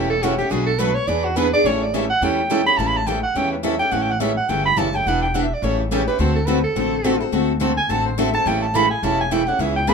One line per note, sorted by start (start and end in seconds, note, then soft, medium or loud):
0.00 0.39 E1 medium
0.00 0.13 C#3 medium
0.00 0.14 E3 medium
0.00 0.13 G3 medium
0.00 0.14 A3 medium
0.00 0.14 C#4 medium
0.00 0.14 E4 medium
0.00 0.14 G4 medium
0.00 0.14 A4 medium
0.10 0.24 A4 loud
0.23 0.33 C#3 medium
0.23 0.33 E3 medium
0.23 0.34 G3 medium
0.23 0.34 A3 loud
0.23 0.33 C#4 loud
0.23 0.34 E4 loud
0.23 0.37 F#4 medium
0.23 0.34 G4 loud
0.23 0.34 A4 loud
0.38 0.51 A3 soft
0.38 0.51 C#4 medium
0.38 0.52 G4 loud
0.38 0.50 G4 medium
0.50 0.96 B1 medium
0.50 0.70 B2 medium
0.50 0.70 F#3 medium
0.50 0.70 A3 medium
0.50 0.71 D4 medium
0.50 0.71 F#4 medium
0.50 0.66 G#4 medium
0.50 0.70 B4 medium
0.67 0.81 A4 loud
0.79 0.90 B2 medium
0.79 0.90 F#3 medium
0.79 0.90 A3 loud
0.79 0.90 D4 loud
0.79 0.91 F#4 loud
0.79 0.96 B4 loud
0.79 0.90 B4 loud
0.95 1.09 C#5 loud
1.07 1.53 E2 loud
1.07 1.27 E3 medium
1.07 1.27 B3 medium
1.07 1.27 D4 medium
1.07 1.27 G#4 medium
1.07 1.27 B4 medium
1.07 1.26 D5 loud
1.25 1.38 F#4 medium
1.36 1.47 E3 medium
1.36 1.47 B3 loud
1.36 1.47 D4 loud
1.36 1.47 G#4 loud
1.36 1.53 B4 loud
1.36 1.48 B4 medium
1.53 1.66 B3 medium
1.53 1.65 D4 medium
1.53 1.65 G#4 medium
1.53 1.68 D5 loud
1.64 2.10 A1 medium
1.64 1.84 C#3 medium
1.64 1.84 E3 medium
1.64 1.84 G3 medium
1.64 1.84 A3 medium
1.64 1.84 C#4 medium
1.64 1.84 E4 medium
1.64 1.85 G4 medium
1.64 1.84 A4 medium
1.64 1.84 C#5 loud
1.82 1.96 D5 medium
1.94 2.04 C#3 medium
1.94 2.04 E3 medium
1.94 2.04 G3 medium
1.94 2.04 A3 loud
1.94 2.05 C#4 medium
1.94 2.04 E4 loud
1.94 2.05 G4 medium
1.94 2.04 A4 loud
1.94 2.09 E5 medium
2.10 2.24 F#5 loud
2.21 2.67 E2 medium
2.21 2.41 C#3 medium
2.21 2.41 E3 medium
2.21 2.41 G3 medium
2.21 2.41 A3 medium
2.21 2.41 C#4 medium
2.21 2.41 E4 medium
2.21 2.41 G4 medium
2.21 2.41 A4 medium
2.21 2.66 G5 medium
2.50 2.60 C#3 medium
2.50 2.61 E3 medium
2.50 2.61 G3 medium
2.50 2.61 A3 loud
2.50 2.61 C#4 medium
2.50 2.61 E4 loud
2.50 2.61 G4 medium
2.50 2.61 A4 loud
2.66 2.79 A3 soft
2.66 2.79 C#4 medium
2.66 2.78 G4 medium
2.66 2.79 B5 loud
2.78 3.24 A1 medium
2.78 2.97 C#3 medium
2.78 2.98 E3 medium
2.78 2.98 G3 medium
2.78 2.98 A3 medium
2.78 2.98 C#4 medium
2.78 2.98 E4 medium
2.78 2.98 G4 medium
2.78 2.98 A4 medium
2.78 2.88 A5 medium
2.87 2.98 B5 loud
2.97 3.08 A5 medium
3.07 3.17 C#3 medium
3.07 3.18 E3 medium
3.07 3.18 G3 medium
3.07 3.18 A3 medium
3.07 3.18 C#4 loud
3.07 3.18 E4 medium
3.07 3.18 G4 medium
3.07 3.18 A4 medium
3.07 3.22 G5 medium
3.23 3.38 F#5 loud
3.35 3.80 E2 medium
3.35 3.54 C#3 medium
3.35 3.54 E3 medium
3.35 3.55 G3 medium
3.35 3.54 A3 medium
3.35 3.55 C#4 medium
3.35 3.55 E4 medium
3.35 3.55 G4 medium
3.35 3.55 A4 medium
3.35 3.51 G5 loud
3.52 3.66 B4 medium
3.63 3.74 C#3 medium
3.63 3.74 E3 medium
3.63 3.74 G3 medium
3.63 3.74 A3 medium
3.63 3.74 C#4 medium
3.63 3.74 E4 medium
3.63 3.75 G4 loud
3.63 3.75 A4 medium
3.63 3.78 E5 medium
3.79 3.91 A3 medium
3.79 3.91 C#4 medium
3.79 3.91 G4 medium
3.79 3.93 G5 loud
3.91 4.37 A1 medium
3.91 4.11 C#3 medium
3.91 4.11 E3 medium
3.91 4.11 G3 medium
3.91 4.11 A3 medium
3.91 4.11 C#4 medium
3.91 4.12 E4 medium
3.91 4.11 G4 medium
3.91 4.11 A4 medium
3.91 4.03 F#5 medium
4.01 4.12 G5 loud
4.11 4.22 F#5 medium
4.20 4.31 C#3 medium
4.20 4.31 E3 medium
4.20 4.31 G3 loud
4.20 4.31 A3 medium
4.20 4.31 C#4 loud
4.20 4.31 E4 loud
4.20 4.31 G4 loud
4.20 4.32 A4 medium
4.20 4.36 E5 medium
4.37 4.51 F#5 medium
4.49 4.73 G1 medium
4.49 4.68 C#3 medium
4.49 4.68 E3 medium
4.49 4.68 G3 medium
4.49 4.68 A3 medium
4.49 4.68 C#4 medium
4.49 4.68 E4 medium
4.49 4.68 G4 medium
4.49 4.68 A4 medium
4.49 4.65 G5 medium
4.66 4.80 B5 loud
4.77 5.01 F#1 medium
4.77 4.87 C#3 medium
4.77 4.88 E3 medium
4.77 4.88 G3 medium
4.77 4.88 A3 medium
4.77 4.88 C#4 loud
4.77 4.88 E4 loud
4.77 4.88 G4 loud
4.77 4.88 A4 medium
4.77 4.97 A5 loud
4.93 5.06 A3 soft
4.93 5.06 C#4 medium
4.93 5.05 G4 medium
4.93 5.09 G5 loud
5.06 5.51 E1 medium
5.06 5.25 E3 medium
5.06 5.25 G3 medium
5.06 5.26 B3 medium
5.06 5.26 D4 medium
5.06 5.26 E4 medium
5.06 5.26 G4 medium
5.06 5.26 B4 medium
5.06 5.22 F#5 loud
5.22 5.36 G5 loud
5.34 5.45 E3 medium
5.34 5.45 G3 medium
5.34 5.45 B3 medium
5.34 5.45 D4 loud
5.34 5.45 E4 loud
5.34 5.45 G4 loud
5.34 5.46 B4 medium
5.34 5.45 F#5 medium
5.44 5.55 E5 medium
5.54 5.65 D5 medium
5.62 6.08 A1 medium
5.62 5.81 C#3 medium
5.62 5.82 E3 medium
5.62 5.82 G3 medium
5.62 5.82 A3 medium
5.62 5.82 C#4 medium
5.62 5.82 E4 medium
5.62 5.82 G4 medium
5.62 5.82 A4 medium
5.62 5.78 C#5 medium
5.79 5.93 E4 medium
5.91 6.01 C#3 medium
5.91 6.02 E3 loud
5.91 6.02 G3 medium
5.91 6.02 A3 loud
5.91 6.02 C#4 loud
5.91 6.02 E4 loud
5.91 6.07 G4 medium
5.91 6.02 G4 loud
5.91 6.02 A4 loud
6.07 6.18 A3 medium
6.07 6.19 C#4 medium
6.07 6.19 G4 medium
6.07 6.20 B4 loud
6.19 6.64 D2 medium
6.19 6.38 D3 medium
6.19 6.38 A3 medium
6.19 6.38 C4 medium
6.19 6.38 F#4 medium
6.19 6.38 A4 medium
6.19 6.35 C5 medium
6.35 6.48 A4 medium
6.47 6.58 D3 medium
6.47 6.58 A3 medium
6.47 6.58 C4 medium
6.47 6.58 F#4 medium
6.47 6.59 A4 loud
6.47 6.63 B4 medium
6.64 7.28 A4 loud
6.76 7.21 A1 medium
6.76 6.95 D3 medium
6.76 6.95 A3 medium
6.76 6.95 C4 medium
6.76 6.95 F#4 medium
6.76 6.95 A4 medium
7.04 7.15 D3 medium
7.04 7.15 A3 medium
7.04 7.15 C4 medium
7.04 7.15 F#4 medium
7.04 7.15 A4 loud
7.20 7.31 C4 soft
7.20 7.32 F#4 medium
7.20 7.32 A4 medium
7.32 7.78 D2 medium
7.32 7.51 D3 medium
7.32 7.51 A3 medium
7.32 7.51 C4 medium
7.32 7.52 F#4 medium
7.32 7.52 A4 medium
7.60 7.71 D3 medium
7.60 7.71 A3 medium
7.60 7.71 C4 loud
7.60 7.71 F#4 medium
7.60 7.72 A4 loud
7.77 7.91 G#5 loud
7.89 8.34 A1 medium
7.89 8.08 D3 medium
7.89 8.08 A3 medium
7.89 8.08 C4 medium
7.89 8.09 F#4 medium
7.89 8.09 A4 medium
7.89 8.05 A5 loud
8.06 8.20 C5 medium
8.18 8.28 D3 medium
8.18 8.28 A3 loud
8.18 8.28 C4 medium
8.18 8.29 F#4 loud
8.18 8.29 A4 loud
8.18 8.34 E5 medium
8.34 8.46 C4 soft
8.34 8.46 F#4 soft
8.34 8.45 A4 medium
8.34 8.49 A5 loud
8.46 8.91 A1 medium
8.46 8.65 C#3 medium
8.46 8.65 E3 medium
8.46 8.65 G3 medium
8.46 8.65 A3 medium
8.46 8.65 C#4 medium
8.46 8.66 E4 medium
8.46 8.65 G4 medium
8.46 8.66 A4 medium
8.46 8.62 G5 loud
8.62 8.77 A5 loud
8.74 8.85 C#3 loud
8.74 8.85 E3 medium
8.74 8.85 G3 loud
8.74 8.85 A3 loud
8.74 8.86 C#4 loud
8.74 8.85 E4 medium
8.74 8.86 G4 loud
8.74 8.85 A4 loud
8.74 8.90 B5 loud
8.91 9.05 G#5 loud
9.03 9.48 E1 medium
9.03 9.22 C#3 medium
9.03 9.22 E3 medium
9.03 9.22 G3 medium
9.03 9.22 A3 medium
9.03 9.22 C#4 medium
9.03 9.22 E4 medium
9.03 9.22 G4 medium
9.03 9.22 A4 medium
9.03 9.20 A5 loud
9.21 9.33 G#5 loud
9.31 9.42 C#3 medium
9.31 9.42 E3 medium
9.31 9.42 G3 medium
9.31 9.42 A3 loud
9.31 9.42 C#4 medium
9.31 9.42 E4 loud
9.31 9.42 G4 loud
9.31 9.42 A4 loud
9.31 9.49 G5 medium
9.47 9.60 A3 soft
9.47 9.59 C#4 medium
9.47 9.59 G4 medium
9.47 9.62 F#5 loud
9.59 9.94 C#2 medium
9.59 9.78 C#3 medium
9.59 9.78 E3 medium
9.59 9.79 G#3 medium
9.59 9.79 B3 medium
9.59 9.79 C#4 medium
9.59 9.79 E4 medium
9.59 9.79 G#4 medium
9.59 9.76 E5 medium
9.76 9.90 G5 loud
9.87 9.94 C#3 loud
9.87 9.94 E3 medium
9.87 9.94 G#3 medium
9.87 9.94 B3 loud
9.87 9.94 C#4 loud
9.87 9.94 E4 loud
9.87 9.94 G#4 medium
9.87 9.94 B5 loud